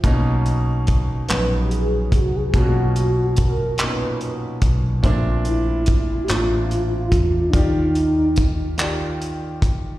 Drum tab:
HH |xxxxxx|xxxxxx|xxxxxx|xxxxxx|
CP |---x--|---x--|---x--|---x--|
BD |o-o--o|o-o--o|o-o--o|o-o--o|